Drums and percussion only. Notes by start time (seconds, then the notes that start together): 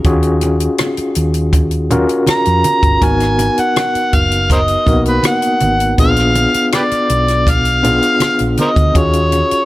0.04 kick, closed hi-hat, muted conga
0.23 closed hi-hat
0.41 closed hi-hat, muted conga
0.60 closed hi-hat
0.78 cross-stick, closed hi-hat, high conga
0.97 closed hi-hat
1.15 closed hi-hat
1.34 closed hi-hat
1.53 kick, closed hi-hat, muted conga
1.71 closed hi-hat
1.90 closed hi-hat, low conga
2.09 closed hi-hat
2.27 cross-stick, closed hi-hat, high conga
2.45 closed hi-hat
2.64 closed hi-hat, high conga
2.83 kick, closed hi-hat
3.02 kick, closed hi-hat, muted conga
3.20 cross-stick, closed hi-hat
3.39 closed hi-hat, muted conga
3.58 closed hi-hat
3.76 cross-stick, closed hi-hat, high conga
3.95 closed hi-hat
4.13 kick, closed hi-hat
4.31 closed hi-hat
4.50 kick, closed hi-hat, muted conga
4.68 closed hi-hat
4.86 kick, closed hi-hat, low conga
5.05 closed hi-hat
5.23 cross-stick, closed hi-hat, high conga
5.42 closed hi-hat
5.60 closed hi-hat, high conga
5.80 closed hi-hat
5.98 kick, closed hi-hat
6.16 cross-stick, closed hi-hat
6.35 closed hi-hat, muted conga
6.54 closed hi-hat
6.72 cross-stick, closed hi-hat, high conga
6.91 closed hi-hat
7.09 closed hi-hat
7.28 cross-stick, closed hi-hat
7.47 kick, closed hi-hat, muted conga
7.65 closed hi-hat
7.84 closed hi-hat, low conga
8.02 closed hi-hat
8.20 cross-stick, closed hi-hat, high conga
8.39 closed hi-hat
8.57 closed hi-hat, high conga
8.76 kick, closed hi-hat
8.95 kick, closed hi-hat
9.13 closed hi-hat
9.32 closed hi-hat, muted conga
9.51 closed hi-hat